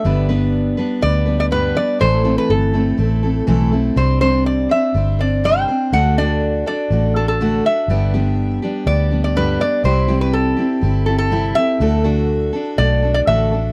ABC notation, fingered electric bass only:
X:1
M:4/4
L:1/8
Q:1/4=122
K:G
V:1 name="Fingered electric bass" clef=bass
G,,,4 D,,4 | A,,,2 G,,,2 A,,,2 B,,,2 | C,,4 G,,,4 | D,,4 A,,,4 |
G,,,4 D,,4 | C,,4 G,,,4 | D,,4 B,,,2 A,,,2 |]